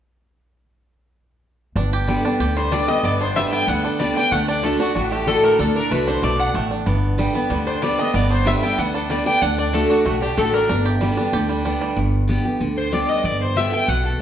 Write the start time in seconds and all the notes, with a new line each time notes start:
1.76 G1 G2 D4
1.93 G4
2.07 D3 G3 B3 G4
2.24 B3 D4 G4
2.40 D2 D3 G4
2.57 G3 C5
2.71 D3 G3 B3 D4 G4 D5
2.88 G3 B3 G4 D#5
3.03 G1 G2 B3 D5
3.21 D4 C5
3.35 D3 G3 B3 G4 E5
3.52 B3 G5
3.68 D2 D3 G3 F#5
3.84 D4 A4, muted resonator guitar played with a steel bar stroke
3.99 D3 G3 B3 G4 D5
4.16 B3 D4 G4 G5
4.31 D2 D3 A3 F#5
4.48 D4 D5
4.63 D3 A3 D4 F#4 A4
4.80 D4 F#4
4.95 A1 A2 D4 F#4
5.12 A3 G4
5.27 D3 A3 D4 F#4 A4
5.43 A3 A#4
5.59 D2 D3 D4 A4
5.76 D4 A#4
5.90 C2 D3 A3 D4 F#4 B4
6.07 D4 F#4 C5
6.23 B1 B2 A3 D5
6.39 D4 F#5
6.54 A1 A2 A3
6.71 D4
6.86 G1 G2 B3
7.18 D3 G3 B3 G4
7.34 B3 G4
7.50 D2 D3 G3
7.67 D4 C5
7.82 D3 G3 B3 G4 D5
7.98 B3 D4 G4 D#5
8.14 G1 G2 B3 D5
8.30 D4 C5
8.45 D3 G3 B3 G4 E5
8.62 B3 G4 G5
8.78 D2 D3 G3 F#5
8.94 D4 A4, muted resonator guitar played with a steel bar stroke
9.09 D3 G3 B3 G4 D5
9.26 B3 D4 G4 G5
9.41 D2 D3 D4 F#5
9.58 D4 D5
9.73 D3 A3 D4 F#4 A4
9.90 D4 F#4
10.05 B1 A2 A3 F#4
10.22 D4 G4
10.37 A1 D3 A3 D4 F#4 A4
10.54 D4 A#4
10.69 G1 G2 D4
10.86 G4
11.00 D3 G3 B3 G4
11.17 B3 D4 G4
11.33 D2 D3 G4
11.49 G3
11.64 D3 G3 B3 D4 G4
11.81 G3
11.96 G1 G2
12.28 D3 G3 B3 G4
12.45 B3 G4
12.60 D2 D3
12.77 C5
12.92 D3 G3 B3 G4 D5
13.09 D#5
13.24 G1 G2 D5
13.41 C5
13.56 D3 G3 B3 G4 E5
13.72 B3 G4 G5
13.88 B1 B2 F#5
14.05 A4, muted resonator guitar played with a steel bar stroke